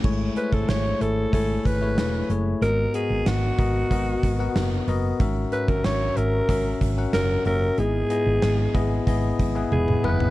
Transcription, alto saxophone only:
0, 0, Header, 1, 2, 480
1, 0, Start_track
1, 0, Tempo, 645161
1, 31, Time_signature, 4, 2, 24, 8
1, 7665, End_track
2, 0, Start_track
2, 0, Title_t, "Alto saxophone"
2, 0, Program_c, 0, 65
2, 276, Note_on_c, 0, 71, 87
2, 398, Note_on_c, 0, 69, 86
2, 409, Note_off_c, 0, 71, 0
2, 515, Note_on_c, 0, 73, 98
2, 526, Note_off_c, 0, 69, 0
2, 757, Note_on_c, 0, 69, 85
2, 768, Note_off_c, 0, 73, 0
2, 994, Note_off_c, 0, 69, 0
2, 997, Note_on_c, 0, 69, 89
2, 1237, Note_on_c, 0, 71, 85
2, 1248, Note_off_c, 0, 69, 0
2, 1713, Note_off_c, 0, 71, 0
2, 1954, Note_on_c, 0, 70, 107
2, 2195, Note_on_c, 0, 68, 92
2, 2206, Note_off_c, 0, 70, 0
2, 2438, Note_on_c, 0, 66, 88
2, 2449, Note_off_c, 0, 68, 0
2, 3634, Note_off_c, 0, 66, 0
2, 4111, Note_on_c, 0, 71, 88
2, 4233, Note_on_c, 0, 70, 90
2, 4244, Note_off_c, 0, 71, 0
2, 4352, Note_on_c, 0, 73, 96
2, 4363, Note_off_c, 0, 70, 0
2, 4591, Note_on_c, 0, 70, 93
2, 4602, Note_off_c, 0, 73, 0
2, 5071, Note_off_c, 0, 70, 0
2, 5315, Note_on_c, 0, 70, 111
2, 5536, Note_off_c, 0, 70, 0
2, 5558, Note_on_c, 0, 70, 105
2, 5796, Note_on_c, 0, 68, 102
2, 5807, Note_off_c, 0, 70, 0
2, 6753, Note_off_c, 0, 68, 0
2, 7235, Note_on_c, 0, 68, 93
2, 7475, Note_on_c, 0, 71, 99
2, 7486, Note_off_c, 0, 68, 0
2, 7665, Note_off_c, 0, 71, 0
2, 7665, End_track
0, 0, End_of_file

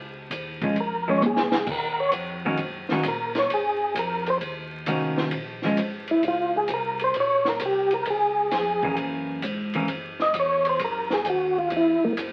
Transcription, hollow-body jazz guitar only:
0, 0, Header, 1, 2, 480
1, 0, Start_track
1, 0, Key_signature, -5, "minor"
1, 0, Tempo, 456274
1, 1764, Time_signature, 4, 2, 24, 8
1, 12966, End_track
2, 0, Start_track
2, 0, Title_t, "Hollow-body jazz guitar"
2, 0, Program_c, 0, 26
2, 658, Note_on_c, 0, 53, 65
2, 664, Note_on_c, 0, 56, 75
2, 669, Note_on_c, 0, 61, 88
2, 792, Note_off_c, 0, 53, 0
2, 795, Note_off_c, 0, 56, 0
2, 798, Note_off_c, 0, 61, 0
2, 1134, Note_on_c, 0, 53, 51
2, 1138, Note_on_c, 0, 56, 57
2, 1150, Note_on_c, 0, 61, 66
2, 1270, Note_off_c, 0, 53, 0
2, 1272, Note_off_c, 0, 56, 0
2, 1278, Note_off_c, 0, 61, 0
2, 2581, Note_on_c, 0, 51, 58
2, 2586, Note_on_c, 0, 58, 73
2, 2589, Note_on_c, 0, 61, 68
2, 2593, Note_on_c, 0, 66, 61
2, 2714, Note_off_c, 0, 51, 0
2, 2717, Note_off_c, 0, 58, 0
2, 2718, Note_off_c, 0, 61, 0
2, 2720, Note_off_c, 0, 66, 0
2, 3065, Note_on_c, 0, 51, 62
2, 3068, Note_on_c, 0, 58, 61
2, 3074, Note_on_c, 0, 61, 64
2, 3077, Note_on_c, 0, 66, 72
2, 3197, Note_off_c, 0, 51, 0
2, 3198, Note_off_c, 0, 58, 0
2, 3201, Note_off_c, 0, 61, 0
2, 3202, Note_off_c, 0, 66, 0
2, 5122, Note_on_c, 0, 51, 55
2, 5130, Note_on_c, 0, 58, 59
2, 5131, Note_on_c, 0, 61, 60
2, 5138, Note_on_c, 0, 66, 61
2, 5603, Note_off_c, 0, 51, 0
2, 5607, Note_off_c, 0, 58, 0
2, 5608, Note_off_c, 0, 61, 0
2, 5611, Note_off_c, 0, 66, 0
2, 5936, Note_on_c, 0, 53, 56
2, 5943, Note_on_c, 0, 56, 69
2, 5950, Note_on_c, 0, 61, 62
2, 6072, Note_off_c, 0, 53, 0
2, 6075, Note_off_c, 0, 56, 0
2, 6079, Note_off_c, 0, 61, 0
2, 9293, Note_on_c, 0, 52, 53
2, 9303, Note_on_c, 0, 58, 58
2, 9311, Note_on_c, 0, 61, 60
2, 9894, Note_off_c, 0, 52, 0
2, 9900, Note_off_c, 0, 58, 0
2, 9903, Note_off_c, 0, 61, 0
2, 10256, Note_on_c, 0, 52, 57
2, 10263, Note_on_c, 0, 58, 63
2, 10266, Note_on_c, 0, 61, 59
2, 10392, Note_off_c, 0, 52, 0
2, 10395, Note_off_c, 0, 58, 0
2, 10396, Note_off_c, 0, 61, 0
2, 12966, End_track
0, 0, End_of_file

